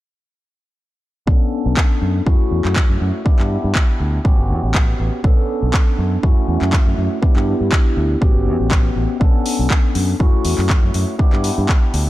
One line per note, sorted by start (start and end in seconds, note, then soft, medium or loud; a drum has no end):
1.27 1.37 B1 medium
1.27 2.22 B3 medium
1.27 2.22 C#4 medium
1.27 2.22 D4 medium
1.27 2.23 A4 medium
1.27 kick loud
1.66 1.73 B1 medium
1.77 kick loud
1.77 clap loud
2.02 2.19 F#2 medium
2.26 2.36 F#2 medium
2.26 3.21 A3 medium
2.26 3.21 C#4 medium
2.26 3.21 E4 medium
2.26 3.22 F#4 medium
2.26 kick loud
2.51 2.61 E2 medium
2.65 2.81 F#2 medium
2.65 clap soft
2.76 kick loud
2.76 clap loud
2.90 2.97 F#2 medium
3.01 3.10 F#2 medium
3.25 4.20 B3 medium
3.25 4.20 D4 medium
3.25 4.21 E4 medium
3.25 4.21 G4 medium
3.25 muted fingered electric bass stroke soft
3.25 kick loud
3.39 3.56 G2 medium
3.39 clap soft
3.64 3.72 G2 medium
3.75 kick loud
3.75 clap loud
4.00 4.18 D2 medium
4.24 4.34 A1 medium
4.24 5.19 B3 medium
4.24 5.20 C#4 medium
4.24 5.20 F#4 medium
4.24 5.20 G4 medium
4.24 kick loud
4.38 4.51 G1 medium
4.50 4.59 E2 medium
4.63 4.94 A1 medium
4.75 kick loud
4.75 clap loud
5.00 5.09 A1 medium
5.24 5.33 B1 medium
5.24 6.19 B3 medium
5.24 6.19 C#4 medium
5.24 6.19 D4 medium
5.24 6.19 A4 medium
5.24 kick loud
5.62 5.70 B1 medium
5.74 kick loud
5.74 clap loud
5.98 6.16 F#2 medium
6.23 6.33 F#2 medium
6.23 7.18 A3 medium
6.23 7.18 C#4 medium
6.23 7.18 E4 medium
6.23 7.19 F#4 medium
6.23 kick loud
6.48 6.57 E2 medium
6.62 6.78 F#2 medium
6.62 clap soft
6.73 kick loud
6.73 clap loud
6.86 6.94 F#2 medium
6.98 7.07 F#2 medium
7.22 8.17 B3 medium
7.22 8.17 D4 medium
7.22 8.17 E4 medium
7.22 8.18 G4 medium
7.22 muted fingered electric bass stroke soft
7.22 kick loud
7.36 7.52 G2 medium
7.36 clap soft
7.61 7.68 G2 medium
7.72 kick loud
7.72 clap loud
7.97 8.15 D2 medium
8.21 8.31 A1 medium
8.21 9.16 B3 medium
8.21 9.16 C#4 medium
8.21 9.16 F#4 medium
8.21 9.17 G4 medium
8.21 kick loud
8.35 8.48 G1 medium
8.46 8.56 E2 medium
8.60 8.90 A1 medium
8.71 kick loud
8.71 clap loud
8.96 9.05 A1 medium
9.20 9.30 B1 medium
9.20 10.15 B3 medium
9.20 10.15 C#4 medium
9.20 10.16 D4 medium
9.20 10.16 A4 medium
9.20 kick loud
9.46 open hi-hat loud
9.59 9.67 B1 medium
9.70 kick loud
9.70 clap loud
9.95 10.13 F#2 medium
9.95 open hi-hat medium
10.19 10.29 F#2 medium
10.19 11.14 A3 medium
10.19 11.15 C#4 medium
10.19 11.15 E4 medium
10.19 11.15 F#4 medium
10.19 kick loud
10.45 10.54 E2 medium
10.45 open hi-hat loud
10.58 10.75 F#2 medium
10.58 clap soft
10.70 kick loud
10.70 clap loud
10.83 10.91 F#2 medium
10.94 11.04 F#2 medium
10.94 open hi-hat medium
11.19 12.10 B3 medium
11.19 12.10 D4 medium
11.19 12.10 E4 medium
11.19 12.10 G4 medium
11.19 muted fingered electric bass stroke soft
11.19 kick loud
11.33 11.49 G2 medium
11.33 clap soft
11.44 open hi-hat loud
11.58 11.65 G2 medium
11.69 kick loud
11.69 clap loud
11.94 12.10 D2 medium
11.94 open hi-hat medium